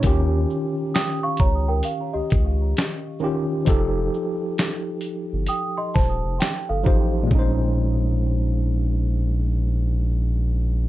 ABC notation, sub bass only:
X:1
M:4/4
L:1/16
Q:"Swing 16ths" 1/4=66
K:Bbdor
V:1 name="Sub bass" clef=bass
E,,2 z4 D,,2 z D,, D,,2 z4 | F,,,2 z4 z G,,, z2 E,,, F,,, z G,,, =A,,,2 | B,,,16 |]